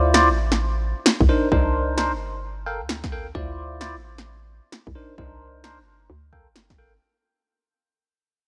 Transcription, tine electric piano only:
0.00 0.12 E4 loud
0.00 0.12 F4 medium
0.00 0.12 C5 medium
0.00 0.12 D5 loud
0.14 0.28 E4 medium
0.14 0.28 F4 medium
0.14 0.28 C5 medium
0.14 0.28 D5 medium
1.29 1.48 D4 medium
1.29 1.48 D#4 medium
1.29 1.48 A#4 medium
1.29 1.48 C5 medium
1.52 1.96 D4 medium
1.52 1.96 D#4 medium
1.52 1.96 A#4 medium
1.52 1.96 C5 loud
1.98 2.11 D4 medium
1.98 2.11 D#4 medium
1.98 2.11 A#4 medium
1.98 2.11 C5 loud
2.66 2.80 A4 medium
2.66 2.80 A#4 medium
2.66 2.80 F5 medium
2.66 2.80 G5 medium
3.12 3.26 A4 medium
3.12 3.26 A#4 medium
3.12 3.26 F5 medium
3.12 3.26 G5 medium
3.35 3.79 E4 loud
3.35 3.79 F4 medium
3.35 3.79 C5 medium
3.35 3.79 D5 loud
3.81 3.95 E4 medium
3.81 3.95 F4 medium
3.81 3.95 C5 medium
3.81 3.95 D5 medium
4.95 5.14 D4 medium
4.95 5.14 D#4 medium
4.95 5.14 A#4 medium
4.95 5.14 C5 medium
5.18 5.62 D4 medium
5.18 5.62 D#4 medium
5.18 5.62 A#4 medium
5.18 5.62 C5 loud
5.64 5.78 D4 medium
5.64 5.78 D#4 medium
5.64 5.78 A#4 medium
5.64 5.78 C5 loud
6.33 6.46 A4 medium
6.33 6.46 A#4 medium
6.33 6.46 F5 medium
6.33 6.46 G5 medium
6.78 6.92 A4 medium
6.78 6.92 A#4 medium
6.78 6.92 F5 medium
6.78 6.92 G5 medium

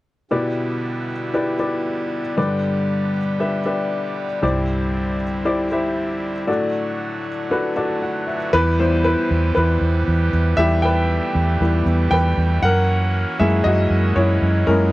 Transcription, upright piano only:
0.31 1.05 B2 medium
0.31 1.12 E4 medium
0.31 1.12 G4 medium
0.31 1.12 B4 medium
0.31 1.12 D5 medium
1.34 1.54 E4 medium
1.34 1.54 G4 medium
1.34 1.55 B4 medium
1.34 1.55 D5 medium
1.59 2.20 E4 medium
1.59 2.20 G4 medium
1.59 2.20 B4 soft
1.59 2.20 D5 medium
2.37 3.10 G2 medium
2.37 3.10 D3 medium
2.37 3.17 D4 medium
2.37 3.18 G4 medium
2.37 3.18 B4 medium
2.37 3.18 D5 medium
3.40 3.60 D4 medium
3.40 3.60 G4 medium
3.40 3.60 B4 medium
3.40 3.60 E5 medium
3.65 4.26 D4 medium
3.65 4.26 G4 medium
3.65 4.26 B4 medium
3.65 4.26 E5 medium
4.42 5.16 G2 medium
4.42 5.23 E4 medium
4.42 5.23 G4 medium
4.42 5.23 C5 medium
4.42 5.23 D5 medium
5.45 5.65 E4 medium
5.45 5.65 G4 medium
5.45 5.65 C5 medium
5.45 5.66 D5 medium
5.72 6.32 E4 medium
5.72 6.32 G4 medium
5.72 6.32 C5 medium
5.72 6.32 E5 medium
6.47 7.21 A2 medium
6.47 7.28 D4 medium
6.47 7.28 F#4 medium
6.47 7.28 A4 medium
6.47 7.28 D5 medium
7.50 7.70 D4 medium
7.50 7.71 F#4 medium
7.50 7.71 A4 medium
7.50 7.71 B4 medium
7.76 8.36 D4 medium
7.76 8.36 F#4 medium
7.76 8.36 A4 medium
7.76 8.37 D5 medium
7.76 8.00 A5 medium
8.02 8.26 F#5 medium
8.27 8.51 E5 medium
8.53 8.77 E4 medium
8.53 8.79 B4 loud
8.79 9.52 G3 soft
8.79 9.52 B3 soft
8.79 9.04 E4 medium
8.79 9.06 C5 medium
9.05 9.53 E4 medium
9.05 9.53 B4 medium
9.55 10.29 E4 medium
9.55 10.28 B4 medium
10.57 11.60 G3 medium
10.57 11.60 B3 soft
10.57 11.60 E4 medium
10.57 10.65 G4 medium
10.57 10.63 E5 loud
10.82 11.83 B4 medium
10.82 11.82 G5 medium
11.61 11.84 G3 medium
11.61 11.84 B3 soft
11.61 11.84 E4 soft
12.11 12.60 B4 medium
12.11 12.59 G5 medium
12.62 13.37 A#4 medium
12.62 13.36 F#5 medium
13.39 13.74 G#3 medium
13.39 13.74 A#3 soft
13.39 13.75 E4 medium
13.39 13.47 G#4 medium
13.39 13.45 E5 medium
13.64 14.14 F#4 medium
13.64 14.18 D#5 medium
14.16 14.65 E4 medium
14.16 14.69 C#5 medium
14.67 14.92 G#3 medium
14.67 14.92 A#3 medium
14.67 14.74 C#4 medium
14.67 14.92 E4 medium
14.67 14.73 A#4 medium

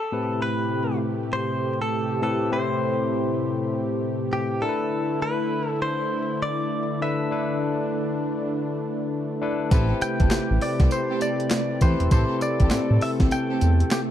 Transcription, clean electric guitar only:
0.00 0.42 A4 medium
0.42 0.98 B4 loud
1.33 1.81 C5 loud
1.82 2.22 A4 medium
2.23 2.52 A4 medium
2.53 4.28 C5 medium
4.33 4.63 G4 medium
4.62 5.22 A4 loud
5.22 5.69 B4 loud
5.69 5.82 A4 loud
5.82 6.42 C5 loud
6.42 7.02 D5 loud
7.02 7.58 E5 loud
10.02 10.64 G5 loud
10.62 10.92 D5 loud
10.92 11.22 C5 loud
11.22 11.82 D5 loud
11.82 12.10 C5 loud
12.12 12.42 C5 loud
12.42 13.04 D5 loud
13.02 13.10 E5 loud
13.32 13.94 G5 loud
13.92 14.00 G4 medium

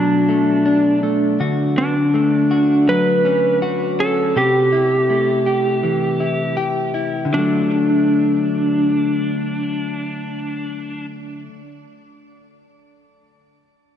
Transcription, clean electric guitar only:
0.00 1.39 B2 medium
0.00 2.87 F#3 medium
0.00 0.28 A3 medium
0.00 0.65 D4 medium
0.29 1.03 A3 medium
0.66 1.77 D4 medium
1.03 1.80 A3 medium
1.40 4.35 D3 medium
1.40 2.50 F#4 medium
1.77 1.94 B3 soft
2.14 5.09 A3 soft
2.51 3.61 F#4 soft
2.88 4.43 F#3 medium
3.25 3.98 C#4 medium
3.62 4.36 F#4 medium
3.99 4.43 C#4 medium
4.36 7.25 C3 medium
4.36 5.45 G4 medium
4.72 6.19 E4 soft
5.10 7.38 A3 soft
5.46 6.56 G4 soft
5.83 7.32 E3 soft
6.20 6.93 E4 soft
6.57 7.39 G4 medium
6.94 7.39 E4 soft
7.25 11.47 D3 medium
7.33 11.55 F#3 medium
7.38 11.60 A3 medium

